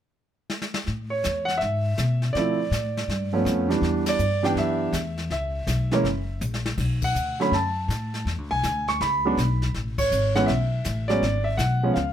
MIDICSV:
0, 0, Header, 1, 4, 480
1, 0, Start_track
1, 0, Key_signature, 3, "major"
1, 0, Tempo, 369458
1, 1132, Time_signature, 4, 2, 24, 8
1, 15758, End_track
2, 0, Start_track
2, 0, Title_t, "Grand piano"
2, 0, Program_c, 0, 0
2, 1432, Note_on_c, 0, 73, 70
2, 1887, Note_on_c, 0, 78, 84
2, 1933, Note_off_c, 0, 73, 0
2, 2047, Note_on_c, 0, 76, 81
2, 2060, Note_off_c, 0, 78, 0
2, 2977, Note_off_c, 0, 76, 0
2, 3025, Note_on_c, 0, 74, 73
2, 3070, Note_on_c, 0, 53, 49
2, 3073, Note_on_c, 0, 57, 43
2, 3079, Note_on_c, 0, 60, 43
2, 3080, Note_on_c, 0, 64, 59
2, 3341, Note_off_c, 0, 53, 0
2, 3343, Note_off_c, 0, 57, 0
2, 3346, Note_off_c, 0, 60, 0
2, 3347, Note_off_c, 0, 64, 0
2, 4323, Note_on_c, 0, 53, 55
2, 4333, Note_on_c, 0, 57, 52
2, 4333, Note_on_c, 0, 59, 50
2, 4337, Note_on_c, 0, 61, 59
2, 4425, Note_off_c, 0, 74, 0
2, 4772, Note_off_c, 0, 53, 0
2, 4777, Note_off_c, 0, 57, 0
2, 4777, Note_off_c, 0, 59, 0
2, 4778, Note_off_c, 0, 61, 0
2, 4789, Note_on_c, 0, 52, 56
2, 4794, Note_on_c, 0, 55, 48
2, 4798, Note_on_c, 0, 59, 51
2, 4805, Note_on_c, 0, 62, 57
2, 5311, Note_on_c, 0, 74, 95
2, 5410, Note_off_c, 0, 52, 0
2, 5412, Note_off_c, 0, 55, 0
2, 5415, Note_off_c, 0, 59, 0
2, 5418, Note_off_c, 0, 62, 0
2, 5744, Note_off_c, 0, 74, 0
2, 5753, Note_on_c, 0, 52, 60
2, 5755, Note_on_c, 0, 67, 55
2, 5759, Note_on_c, 0, 59, 53
2, 5771, Note_on_c, 0, 62, 65
2, 5784, Note_on_c, 0, 79, 83
2, 5849, Note_off_c, 0, 79, 0
2, 5957, Note_on_c, 0, 76, 77
2, 6372, Note_off_c, 0, 52, 0
2, 6373, Note_off_c, 0, 67, 0
2, 6375, Note_off_c, 0, 59, 0
2, 6381, Note_off_c, 0, 62, 0
2, 6890, Note_off_c, 0, 76, 0
2, 6910, Note_on_c, 0, 76, 73
2, 7688, Note_on_c, 0, 52, 66
2, 7702, Note_on_c, 0, 56, 58
2, 7707, Note_on_c, 0, 58, 61
2, 7713, Note_on_c, 0, 61, 72
2, 7837, Note_off_c, 0, 52, 0
2, 7844, Note_off_c, 0, 56, 0
2, 7846, Note_off_c, 0, 58, 0
2, 7849, Note_off_c, 0, 61, 0
2, 8289, Note_off_c, 0, 76, 0
2, 9150, Note_on_c, 0, 78, 77
2, 9611, Note_on_c, 0, 50, 60
2, 9614, Note_on_c, 0, 54, 55
2, 9616, Note_on_c, 0, 57, 53
2, 9629, Note_on_c, 0, 61, 71
2, 9632, Note_off_c, 0, 78, 0
2, 9640, Note_on_c, 0, 83, 80
2, 9759, Note_off_c, 0, 50, 0
2, 9761, Note_off_c, 0, 54, 0
2, 9761, Note_off_c, 0, 57, 0
2, 9768, Note_off_c, 0, 61, 0
2, 9795, Note_off_c, 0, 83, 0
2, 9797, Note_on_c, 0, 81, 75
2, 10694, Note_off_c, 0, 81, 0
2, 11053, Note_on_c, 0, 80, 92
2, 11544, Note_off_c, 0, 80, 0
2, 11544, Note_on_c, 0, 85, 83
2, 11692, Note_off_c, 0, 85, 0
2, 11714, Note_on_c, 0, 83, 86
2, 12019, Note_on_c, 0, 54, 55
2, 12025, Note_on_c, 0, 56, 56
2, 12038, Note_on_c, 0, 59, 58
2, 12041, Note_on_c, 0, 62, 65
2, 12164, Note_off_c, 0, 54, 0
2, 12167, Note_off_c, 0, 56, 0
2, 12174, Note_off_c, 0, 59, 0
2, 12175, Note_off_c, 0, 62, 0
2, 12613, Note_off_c, 0, 83, 0
2, 12971, Note_on_c, 0, 73, 92
2, 13416, Note_off_c, 0, 73, 0
2, 13452, Note_on_c, 0, 52, 65
2, 13455, Note_on_c, 0, 78, 81
2, 13460, Note_on_c, 0, 56, 62
2, 13461, Note_on_c, 0, 59, 64
2, 13472, Note_on_c, 0, 61, 74
2, 13593, Note_on_c, 0, 76, 78
2, 13600, Note_off_c, 0, 52, 0
2, 13605, Note_off_c, 0, 56, 0
2, 13605, Note_off_c, 0, 59, 0
2, 13607, Note_off_c, 0, 78, 0
2, 13611, Note_off_c, 0, 61, 0
2, 14395, Note_on_c, 0, 74, 89
2, 14415, Note_on_c, 0, 56, 56
2, 14420, Note_off_c, 0, 76, 0
2, 14421, Note_on_c, 0, 54, 62
2, 14427, Note_on_c, 0, 61, 67
2, 14432, Note_on_c, 0, 59, 55
2, 14562, Note_off_c, 0, 56, 0
2, 14565, Note_off_c, 0, 54, 0
2, 14568, Note_off_c, 0, 61, 0
2, 14570, Note_off_c, 0, 59, 0
2, 14865, Note_on_c, 0, 76, 73
2, 14896, Note_off_c, 0, 74, 0
2, 15031, Note_off_c, 0, 76, 0
2, 15037, Note_on_c, 0, 78, 73
2, 15370, Note_on_c, 0, 53, 56
2, 15375, Note_on_c, 0, 56, 48
2, 15382, Note_on_c, 0, 59, 50
2, 15383, Note_on_c, 0, 61, 60
2, 15492, Note_off_c, 0, 78, 0
2, 15510, Note_on_c, 0, 77, 62
2, 15519, Note_off_c, 0, 53, 0
2, 15522, Note_off_c, 0, 56, 0
2, 15525, Note_off_c, 0, 59, 0
2, 15526, Note_off_c, 0, 61, 0
2, 15758, Note_off_c, 0, 77, 0
2, 15758, End_track
3, 0, Start_track
3, 0, Title_t, "Upright bass"
3, 0, Program_c, 1, 32
3, 1136, Note_on_c, 1, 45, 66
3, 1599, Note_off_c, 1, 45, 0
3, 1627, Note_on_c, 1, 40, 73
3, 2085, Note_off_c, 1, 40, 0
3, 2099, Note_on_c, 1, 44, 71
3, 2561, Note_off_c, 1, 44, 0
3, 2573, Note_on_c, 1, 47, 80
3, 3038, Note_off_c, 1, 47, 0
3, 3051, Note_on_c, 1, 50, 66
3, 3514, Note_off_c, 1, 50, 0
3, 3521, Note_on_c, 1, 45, 75
3, 3991, Note_off_c, 1, 45, 0
3, 4000, Note_on_c, 1, 43, 65
3, 4471, Note_off_c, 1, 43, 0
3, 4483, Note_on_c, 1, 41, 82
3, 4947, Note_off_c, 1, 41, 0
3, 4954, Note_on_c, 1, 40, 75
3, 5428, Note_off_c, 1, 40, 0
3, 5443, Note_on_c, 1, 43, 74
3, 5906, Note_off_c, 1, 43, 0
3, 5914, Note_on_c, 1, 42, 64
3, 6388, Note_off_c, 1, 42, 0
3, 6398, Note_on_c, 1, 40, 85
3, 6870, Note_off_c, 1, 40, 0
3, 6886, Note_on_c, 1, 37, 70
3, 7354, Note_off_c, 1, 37, 0
3, 7362, Note_on_c, 1, 35, 76
3, 7832, Note_off_c, 1, 35, 0
3, 7839, Note_on_c, 1, 30, 67
3, 8311, Note_off_c, 1, 30, 0
3, 8329, Note_on_c, 1, 34, 77
3, 8796, Note_off_c, 1, 34, 0
3, 8807, Note_on_c, 1, 35, 74
3, 9276, Note_off_c, 1, 35, 0
3, 9286, Note_on_c, 1, 38, 70
3, 9755, Note_off_c, 1, 38, 0
3, 9761, Note_on_c, 1, 42, 68
3, 10233, Note_off_c, 1, 42, 0
3, 10241, Note_on_c, 1, 45, 81
3, 10713, Note_off_c, 1, 45, 0
3, 10722, Note_on_c, 1, 40, 73
3, 10888, Note_off_c, 1, 40, 0
3, 10888, Note_on_c, 1, 38, 50
3, 11051, Note_off_c, 1, 38, 0
3, 11060, Note_on_c, 1, 35, 58
3, 11206, Note_off_c, 1, 35, 0
3, 11214, Note_on_c, 1, 38, 80
3, 11680, Note_off_c, 1, 38, 0
3, 11699, Note_on_c, 1, 37, 73
3, 12162, Note_off_c, 1, 37, 0
3, 12178, Note_on_c, 1, 35, 89
3, 12642, Note_off_c, 1, 35, 0
3, 12658, Note_on_c, 1, 33, 70
3, 13122, Note_off_c, 1, 33, 0
3, 13139, Note_on_c, 1, 32, 74
3, 13603, Note_off_c, 1, 32, 0
3, 13619, Note_on_c, 1, 35, 68
3, 14083, Note_off_c, 1, 35, 0
3, 14104, Note_on_c, 1, 33, 83
3, 14565, Note_off_c, 1, 33, 0
3, 14575, Note_on_c, 1, 32, 67
3, 15035, Note_off_c, 1, 32, 0
3, 15042, Note_on_c, 1, 35, 82
3, 15514, Note_off_c, 1, 35, 0
3, 15533, Note_on_c, 1, 37, 65
3, 15758, Note_off_c, 1, 37, 0
3, 15758, End_track
4, 0, Start_track
4, 0, Title_t, "Drums"
4, 645, Note_on_c, 9, 38, 59
4, 775, Note_off_c, 9, 38, 0
4, 801, Note_on_c, 9, 38, 67
4, 931, Note_off_c, 9, 38, 0
4, 962, Note_on_c, 9, 38, 79
4, 1092, Note_off_c, 9, 38, 0
4, 1121, Note_on_c, 9, 25, 37
4, 1121, Note_on_c, 9, 38, 34
4, 1250, Note_off_c, 9, 38, 0
4, 1607, Note_on_c, 9, 44, 49
4, 1610, Note_on_c, 9, 38, 47
4, 1737, Note_off_c, 9, 44, 0
4, 1739, Note_off_c, 9, 38, 0
4, 1927, Note_on_c, 9, 38, 32
4, 2057, Note_off_c, 9, 38, 0
4, 2089, Note_off_c, 9, 25, 0
4, 2089, Note_on_c, 9, 25, 43
4, 2089, Note_on_c, 9, 38, 34
4, 2219, Note_off_c, 9, 38, 0
4, 2567, Note_on_c, 9, 44, 42
4, 2569, Note_on_c, 9, 38, 47
4, 2696, Note_off_c, 9, 44, 0
4, 2699, Note_off_c, 9, 38, 0
4, 2883, Note_on_c, 9, 38, 34
4, 3013, Note_off_c, 9, 38, 0
4, 3053, Note_off_c, 9, 25, 0
4, 3053, Note_on_c, 9, 25, 40
4, 3053, Note_on_c, 9, 38, 35
4, 3183, Note_off_c, 9, 38, 0
4, 3535, Note_on_c, 9, 44, 44
4, 3538, Note_on_c, 9, 38, 47
4, 3665, Note_off_c, 9, 44, 0
4, 3668, Note_off_c, 9, 38, 0
4, 3862, Note_on_c, 9, 38, 42
4, 3992, Note_off_c, 9, 38, 0
4, 4020, Note_off_c, 9, 25, 0
4, 4020, Note_on_c, 9, 25, 38
4, 4020, Note_on_c, 9, 38, 38
4, 4150, Note_off_c, 9, 38, 0
4, 4496, Note_on_c, 9, 44, 49
4, 4499, Note_on_c, 9, 38, 48
4, 4626, Note_off_c, 9, 44, 0
4, 4629, Note_off_c, 9, 38, 0
4, 4813, Note_on_c, 9, 38, 31
4, 4943, Note_off_c, 9, 38, 0
4, 4975, Note_off_c, 9, 25, 0
4, 4975, Note_on_c, 9, 25, 38
4, 4975, Note_on_c, 9, 38, 36
4, 5105, Note_off_c, 9, 38, 0
4, 5274, Note_on_c, 9, 51, 59
4, 5277, Note_on_c, 9, 38, 66
4, 5404, Note_off_c, 9, 51, 0
4, 5407, Note_off_c, 9, 38, 0
4, 5441, Note_on_c, 9, 44, 47
4, 5571, Note_off_c, 9, 44, 0
4, 5769, Note_on_c, 9, 38, 32
4, 5899, Note_off_c, 9, 38, 0
4, 5935, Note_off_c, 9, 25, 0
4, 5935, Note_on_c, 9, 25, 42
4, 5935, Note_on_c, 9, 38, 38
4, 6065, Note_off_c, 9, 38, 0
4, 6407, Note_on_c, 9, 44, 54
4, 6410, Note_on_c, 9, 38, 47
4, 6537, Note_off_c, 9, 44, 0
4, 6540, Note_off_c, 9, 38, 0
4, 6725, Note_on_c, 9, 38, 35
4, 6854, Note_off_c, 9, 38, 0
4, 6892, Note_off_c, 9, 25, 0
4, 6892, Note_on_c, 9, 25, 39
4, 6892, Note_on_c, 9, 38, 35
4, 7022, Note_off_c, 9, 38, 0
4, 7368, Note_on_c, 9, 44, 47
4, 7370, Note_on_c, 9, 38, 53
4, 7498, Note_off_c, 9, 44, 0
4, 7500, Note_off_c, 9, 38, 0
4, 7682, Note_on_c, 9, 38, 31
4, 7812, Note_off_c, 9, 38, 0
4, 7858, Note_off_c, 9, 25, 0
4, 7858, Note_on_c, 9, 25, 38
4, 7858, Note_on_c, 9, 38, 37
4, 7988, Note_off_c, 9, 38, 0
4, 8329, Note_on_c, 9, 44, 46
4, 8332, Note_on_c, 9, 48, 33
4, 8459, Note_off_c, 9, 44, 0
4, 8462, Note_off_c, 9, 48, 0
4, 8493, Note_on_c, 9, 38, 51
4, 8623, Note_off_c, 9, 38, 0
4, 8647, Note_on_c, 9, 38, 64
4, 8777, Note_off_c, 9, 38, 0
4, 8803, Note_off_c, 9, 25, 0
4, 8803, Note_on_c, 9, 25, 44
4, 8803, Note_on_c, 9, 38, 35
4, 8803, Note_on_c, 9, 49, 57
4, 8806, Note_on_c, 9, 36, 63
4, 8933, Note_off_c, 9, 38, 0
4, 8933, Note_off_c, 9, 49, 0
4, 8936, Note_off_c, 9, 36, 0
4, 9118, Note_on_c, 9, 51, 61
4, 9124, Note_on_c, 9, 36, 71
4, 9248, Note_off_c, 9, 51, 0
4, 9254, Note_off_c, 9, 36, 0
4, 9290, Note_on_c, 9, 44, 47
4, 9420, Note_off_c, 9, 44, 0
4, 9627, Note_on_c, 9, 38, 33
4, 9757, Note_off_c, 9, 38, 0
4, 9784, Note_off_c, 9, 25, 0
4, 9784, Note_on_c, 9, 25, 44
4, 9784, Note_on_c, 9, 38, 37
4, 9914, Note_off_c, 9, 38, 0
4, 10264, Note_on_c, 9, 44, 51
4, 10266, Note_on_c, 9, 38, 47
4, 10393, Note_off_c, 9, 44, 0
4, 10396, Note_off_c, 9, 38, 0
4, 10573, Note_on_c, 9, 38, 34
4, 10703, Note_off_c, 9, 38, 0
4, 10741, Note_off_c, 9, 25, 0
4, 10741, Note_on_c, 9, 25, 39
4, 10741, Note_on_c, 9, 38, 36
4, 10871, Note_off_c, 9, 38, 0
4, 11216, Note_on_c, 9, 44, 47
4, 11218, Note_on_c, 9, 38, 50
4, 11346, Note_off_c, 9, 44, 0
4, 11348, Note_off_c, 9, 38, 0
4, 11534, Note_on_c, 9, 38, 33
4, 11664, Note_off_c, 9, 38, 0
4, 11703, Note_off_c, 9, 25, 0
4, 11703, Note_on_c, 9, 25, 41
4, 11703, Note_on_c, 9, 38, 40
4, 11833, Note_off_c, 9, 38, 0
4, 12185, Note_on_c, 9, 44, 42
4, 12188, Note_on_c, 9, 38, 48
4, 12315, Note_off_c, 9, 44, 0
4, 12318, Note_off_c, 9, 38, 0
4, 12496, Note_on_c, 9, 38, 34
4, 12626, Note_off_c, 9, 38, 0
4, 12660, Note_off_c, 9, 25, 0
4, 12660, Note_on_c, 9, 25, 42
4, 12660, Note_on_c, 9, 38, 35
4, 12790, Note_off_c, 9, 38, 0
4, 12969, Note_on_c, 9, 36, 72
4, 12969, Note_on_c, 9, 51, 68
4, 13099, Note_off_c, 9, 36, 0
4, 13099, Note_off_c, 9, 51, 0
4, 13140, Note_on_c, 9, 44, 52
4, 13270, Note_off_c, 9, 44, 0
4, 13449, Note_on_c, 9, 38, 32
4, 13578, Note_off_c, 9, 38, 0
4, 13613, Note_off_c, 9, 25, 0
4, 13613, Note_on_c, 9, 25, 37
4, 13613, Note_on_c, 9, 38, 37
4, 13743, Note_off_c, 9, 38, 0
4, 14090, Note_on_c, 9, 44, 53
4, 14093, Note_on_c, 9, 38, 49
4, 14220, Note_off_c, 9, 44, 0
4, 14223, Note_off_c, 9, 38, 0
4, 14411, Note_on_c, 9, 38, 34
4, 14541, Note_off_c, 9, 38, 0
4, 14585, Note_off_c, 9, 25, 0
4, 14585, Note_on_c, 9, 25, 38
4, 14585, Note_on_c, 9, 38, 37
4, 14715, Note_off_c, 9, 38, 0
4, 15051, Note_on_c, 9, 44, 43
4, 15053, Note_on_c, 9, 38, 49
4, 15181, Note_off_c, 9, 44, 0
4, 15183, Note_off_c, 9, 38, 0
4, 15534, Note_off_c, 9, 25, 0
4, 15534, Note_on_c, 9, 25, 37
4, 15534, Note_on_c, 9, 38, 37
4, 15664, Note_off_c, 9, 38, 0
4, 15758, Note_off_c, 9, 25, 0
4, 15758, End_track
0, 0, End_of_file